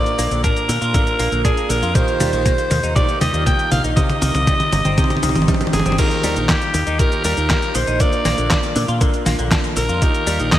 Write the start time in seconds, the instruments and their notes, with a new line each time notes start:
Already playing: grand piano A#2 A#3 D4 F4 A#4, alto saxophone D5
0.06 closed hi-hat, cabasa
0.19 fingered electric bass A#1, clean electric guitar A#3, open hi-hat, cabasa
0.31 fingered electric bass A#1, clean electric guitar D3, closed hi-hat, cabasa
0.44 clean electric guitar D4, alto saxophone A#4, kick, closed hi-hat, mid tom, cabasa
0.57 closed hi-hat, cabasa
0.69 fingered electric bass A#2, clean electric guitar D3, open hi-hat, cabasa
0.82 fingered electric bass A#2, clean electric guitar F4, closed hi-hat, cabasa
0.94 grand piano A#2 A#3 D4 F4 A#4, clean electric guitar D3, kick, closed hi-hat, mid tom, cabasa
1.07 closed hi-hat, cabasa
1.19 fingered electric bass A#1, clean electric guitar A#3, open hi-hat, cabasa
1.32 fingered electric bass A#1, clean electric guitar D3, closed hi-hat, cabasa
1.44 clean electric guitar D4, alto saxophone G#4, kick, closed hi-hat, mid tom, cabasa
1.57 closed hi-hat, cabasa
1.70 fingered electric bass A#1, clean electric guitar D3, alto saxophone A#4, open hi-hat, cabasa
1.82 fingered electric bass F2, clean electric guitar F4, closed hi-hat, cabasa
1.95 clean electric guitar D#3, grand piano D#3 A#3 D#4 F4 G4, alto saxophone C5, kick, closed hi-hat, mid tom, cabasa
2.08 closed hi-hat, cabasa
2.20 fingered electric bass D#2, clean electric guitar G3, open hi-hat, mid tom, cabasa
2.33 fingered electric bass A#1, clean electric guitar D#3, closed hi-hat, cabasa
2.46 clean electric guitar A#3, kick, closed hi-hat, mid tom, cabasa
2.58 closed hi-hat, cabasa
2.71 fingered electric bass D#2, clean electric guitar D#3, open hi-hat, mid tom, cabasa
2.83 fingered electric bass D#2, clean electric guitar D#4, closed hi-hat, cabasa
2.96 grand piano D#3 A#3 D#4 F4 G4, clean electric guitar D#3, alto saxophone D5, kick, closed hi-hat, mid tom, cabasa
3.09 closed hi-hat, cabasa
3.21 fingered electric bass D#2, clean electric guitar G3, alto saxophone D#5, open hi-hat, mid tom, cabasa
3.34 fingered electric bass D#2, clean electric guitar D#3, closed hi-hat, cabasa
3.46 clean electric guitar A#3, alto saxophone G5, kick, closed hi-hat, mid tom, cabasa
3.59 closed hi-hat, cabasa
3.71 fingered electric bass A#1, clean electric guitar D#3, alto saxophone F5, open hi-hat, mid tom, cabasa
3.84 fingered electric bass A#1, clean electric guitar D#4, closed hi-hat, cabasa
3.97 clean electric guitar C3, grand piano C3 C4 D#4 G4, alto saxophone D#5, kick, closed hi-hat, mid tom, cabasa
4.10 closed hi-hat, mid tom, cabasa
4.22 fingered electric bass C2, clean electric guitar D#3, open hi-hat, mid tom, cabasa
4.35 fingered electric bass C2, clean electric guitar C3, closed hi-hat, mid tom, cabasa
4.47 clean electric guitar G3, kick, closed hi-hat, mid tom, cabasa
4.60 closed hi-hat, mid tom, cabasa
4.72 fingered electric bass G1, clean electric guitar C3, open hi-hat, mid tom, cabasa
4.85 fingered electric bass G1, clean electric guitar C4, closed hi-hat, mid tom, cabasa
4.98 grand piano C3 C4 D#4 G4, clean electric guitar C3, kick, closed hi-hat, mid tom, cabasa
5.04 mid tom
5.10 closed hi-hat, mid tom, cabasa
5.17 mid tom
5.23 fingered electric bass C2, clean electric guitar D#3, open hi-hat, mid tom, cabasa
5.29 mid tom
5.35 fingered electric bass G1, clean electric guitar C3, closed hi-hat, mid tom, cabasa
5.42 mid tom
5.48 grand piano C3 C4 D4 D#4 G4, clean electric guitar G3, kick, closed hi-hat, mid tom, cabasa
5.54 mid tom
5.61 grand piano C3 C4 D4 D#4 G4, closed hi-hat, mid tom, cabasa
5.67 mid tom
5.73 fingered electric bass G1, clean electric guitar C3, grand piano C4 D4 D#4 G4, alto saxophone G#4, open hi-hat, mid tom, cabasa
5.80 mid tom
5.86 fingered electric bass G1, clean electric guitar C4, closed hi-hat, mid tom, cabasa
5.92 mid tom
5.98 grand piano D#3 A#3 D#4 F4 G4, clean electric guitar D#3, alto saxophone A#4, kick, closed hi-hat, crash, cabasa
6.11 closed hi-hat, cabasa
6.24 fingered electric bass D#2, clean electric guitar G3, open hi-hat, cabasa
6.36 fingered electric bass A#1, clean electric guitar D#3, closed hi-hat, cabasa
6.49 clean electric guitar A#3, alto saxophone G4, kick, snare, clap, closed hi-hat, cabasa
6.62 closed hi-hat, cabasa
6.74 fingered electric bass D#2, clean electric guitar D#3, open hi-hat, cabasa
6.87 fingered electric bass D#2, clean electric guitar D#4, closed hi-hat, cabasa
6.99 clean electric guitar D#3, grand piano D#3 A#3 D#4 F4 G4, alto saxophone A#4, kick, closed hi-hat, cabasa
7.12 closed hi-hat, cabasa
7.24 fingered electric bass D#2, clean electric guitar G3, alto saxophone A#4, open hi-hat, cabasa
7.37 fingered electric bass D#2, clean electric guitar D#3, closed hi-hat, cabasa
7.50 clean electric guitar A#3, kick, snare, clap, closed hi-hat, cabasa
7.62 closed hi-hat, cabasa
7.75 fingered electric bass A#1, clean electric guitar D#3, alto saxophone C5, open hi-hat, cabasa
7.87 fingered electric bass A#1, clean electric guitar D#4, closed hi-hat, cabasa
8.00 grand piano A#2 A#3 D4 F4 A#4, clean electric guitar D3, alto saxophone D5, kick, closed hi-hat, cabasa
8.13 closed hi-hat, cabasa
8.25 fingered electric bass A#1, clean electric guitar A#3, snare, open hi-hat, cabasa
8.38 fingered electric bass A#1, clean electric guitar D3, closed hi-hat, cabasa
8.51 clean electric guitar D4, kick, snare, clap, closed hi-hat, cabasa
8.63 closed hi-hat, cabasa
8.76 fingered electric bass A#2, clean electric guitar D3, open hi-hat, cabasa
8.88 fingered electric bass A#2, clean electric guitar F4, closed hi-hat, cabasa
9.01 grand piano A#2 A#3 D4 F4 A#4, clean electric guitar D3, kick, closed hi-hat, cabasa
9.14 closed hi-hat, cabasa
9.26 fingered electric bass A#1, clean electric guitar A#3, snare, open hi-hat, cabasa
9.39 fingered electric bass A#1, clean electric guitar D3, closed hi-hat, cabasa
9.51 clean electric guitar D4, kick, snare, clap, closed hi-hat, cabasa
9.64 closed hi-hat, cabasa
9.77 fingered electric bass A#1, clean electric guitar D3, alto saxophone A#4, open hi-hat, cabasa
9.89 fingered electric bass F2, clean electric guitar F4, closed hi-hat, cabasa
10.02 clean electric guitar D#3, grand piano D#3 A#3 D#4 F4 G4, kick, closed hi-hat, cabasa
10.14 closed hi-hat, cabasa
10.27 fingered electric bass D#2, clean electric guitar G3, open hi-hat, cabasa
10.39 fingered electric bass A#1, clean electric guitar D#3, closed hi-hat, cabasa
10.52 clean electric guitar A#3, alto saxophone D#5, kick, snare, clap, closed hi-hat, cabasa